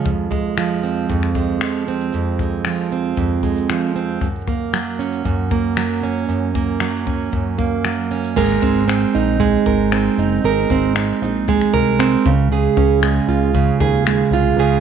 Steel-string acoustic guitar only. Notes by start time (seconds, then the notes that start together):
Already playing: C#3 F3 G#3 C#4
0.05 F2
0.31 G#3
0.57 F3
0.83 C4
1.10 F2
1.36 G#3
1.61 F3
1.88 C4
2.14 F2
2.40 G#3
2.66 F3
2.92 C4
3.17 F2
3.43 G#3
3.70 F3
3.96 C4
4.22 F#2
4.48 A#3
4.73 F#3
4.99 C#4
5.25 F#2
5.52 A#3
5.77 F#3
6.03 C#4
6.29 F#2
6.55 A#3
6.81 F#3
7.07 C#4
7.33 F#2
7.58 A#3
7.85 F#3
8.11 C#4
8.36 G#3 A#4
8.62 C4
8.88 C4
9.15 D#4
9.40 G#3
9.66 A#4
9.92 C4
10.19 D#4
10.44 G#3 A#4
10.71 C4
10.97 C4
11.23 D#4
11.49 G#3
11.74 A#4
11.99 C4
12.26 C#3
12.52 C#3 G#4
12.77 C#4
13.03 G#3
13.29 F4
13.55 C#3
13.81 G#4
14.07 G#3
14.33 F4
14.59 C#3 G#4